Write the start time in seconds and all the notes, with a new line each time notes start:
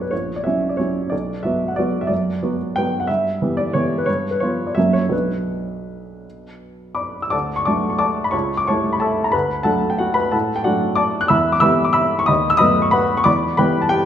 Already playing: B1 F#3 B3 D4 C#5 D5 E5
0.01 B4
0.11 A#1 C#5
0.36 D5
0.44 F#3 C#4 E4 E5
0.69 D5
0.77 F#3 C#4 E4 C#5
1.10 B1 D5
1.43 F#3 B3 F#4 E5
1.68 F#5
1.76 F#3 B3 F#4 D5
2.01 E5
2.07 F#2 D5
2.42 F#3 B3 F#4
2.76 F#3 B3 F#4 G5
3.00 F#5
3.07 G2 E5
3.42 E3 B3 G4
3.57 D5
3.73 E3 B3 G4 C#5
3.98 B4
4.06 G2 C#5
4.31 B4
4.40 F3 B3 F4 C#5
4.67 D5
4.75 F#2 F#3 A#3 C#4 E5
4.93 C#5
5.09 B1 F#3 B3 D4 B4
6.95 D5 B5 D6
7.22 E6
7.30 D2 D5 A5 D6
7.56 C#6
7.65 F#3 A3 D4 D5 A5 D6
7.90 C#6
7.99 D5 A5 D6
8.24 B5
8.31 C#2 C#5 A5 C#6
8.57 D6
8.67 G3 A3 E4 C#5 A5 C#6
8.93 B5
9.00 A4 E5 A5
9.24 A#5
9.32 D2 B4 B5
9.63 F#3 A3 D4 A4 F#5 A5
9.90 G5
9.98 F#4 F#5
10.14 B4 B5
10.32 A2 A4 F#5 A5
10.56 G5
10.64 F#3 A3 D4 F#4 D5 F#5
10.96 D5 A5 D6
11.21 F#6
11.28 E2 E5 B5 E6
11.52 D6
11.60 E3 G3 B3 E5 B5 E6
11.84 D6
11.93 E5 B5 E6
12.19 C#6
12.26 D#2 D#5 B5 D#6
12.50 E6
12.57 F#3 A3 B3 D#5 B5 D#6
12.82 C#6
12.91 B4 F#5 B5
13.17 C#6
13.24 E2 D5 B5 D6
13.57 E3 G3 B3 B4 G5 B5
13.82 A5
13.89 G4 G5